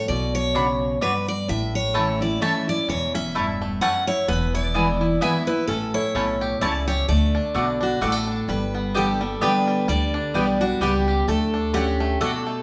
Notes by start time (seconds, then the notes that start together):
0.08 B1 B2 D5
0.35 C#5
0.55 C#3 D4 F#4 C#5 B5
1.01 G2 D4 F#4 B4 C#5 B5
1.28 D5
1.48 A1 A2 E5
1.75 C#5
1.94 E3 A3 C#4 E4 C#5 A5
2.21 C#4 E4 D5
2.41 E3 A3 C#4 E4 C#5 E5 A5
2.68 C#4 E4 D5
2.89 E1 E2 E3 C#5
3.15 C#4 E5
3.35 G2 A3 E4 C#5 A5
3.62 A3
3.81 F#2 A3 C#4 E4 C#5 F#5 A5
4.07 E4 C#5
4.28 E1 E2 B3 B4
4.54 E4 D5
4.74 E3 G#3 B3 E4 B4 G#5
5.01 B3 E4
5.21 E3 G#3 B3 E4 B4 E5 G#5
5.47 B3 E4 B4
5.67 A1 A2 C#4 A4
5.94 E4 C#5
6.15 B1 B2 A3 C#4 E4 C#5 A5
6.41 G4
6.61 C#2 C#3 A3 E4 C#5 D5 A5
6.88 G4 C#5
7.08 D2 D3 A3 D5
7.35 D4
7.54 B1 B2 A3 D4 F#4 D5 F#5
7.81 D4 F#4
8.01 A1 A2 G3 A3 F#4 A4 D5 F#5
8.12 A3
8.27 D4
8.48 G1 G2 G3 B4
8.75 B3
8.94 D3 G3 B3 G4 A4 D5 G5
9.20 G3 B3 G4
9.41 D3 G3 B3 D4 G4 B4 D5 G5
9.68 G3
9.88 D2 D3 G3 D5
10.14 D4
10.34 B1 D3 G3 B3 G4 D5 G5
10.61 D4 F#4
10.80 C#2 G3 B3 G4 D5 G5
11.08 G4
11.27 D2 D3 A3 A4
11.54 D4
11.74 A3 C#4 F#4 G4 D5 F#5
12.00 A3
12.21 B2 A3 D4 F#4 A4 D5 F#5
12.47 A3